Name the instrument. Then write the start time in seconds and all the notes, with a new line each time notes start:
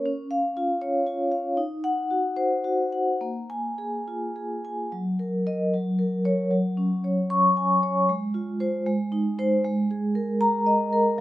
vibraphone
0.06 C#4
0.31 F5
0.57 F4
0.82 C#5
1.07 F4
1.32 F5
1.57 D#4
1.84 F#5
2.11 F#4
2.36 C5
2.64 F#4
2.92 F#5
3.21 A#3
3.50 G#5
3.78 G#4
4.08 F4
4.36 G#4
4.65 G#5
4.92 F#3
5.19 A#4
5.46 A#4 D#5
5.74 F#3
5.99 A#4
6.25 A#4 C#5
6.51 F#3
6.77 C#4
7.04 C#5
7.30 C#6
7.57 G#5
7.83 C#5
8.09 G#3
8.34 F4
8.60 F4 C5
8.86 G#3
9.12 D#4
9.39 D#4 C5
9.65 G#3
9.91 G#4
10.15 A#4
10.41 A#5
10.66 D#5
10.93 A#4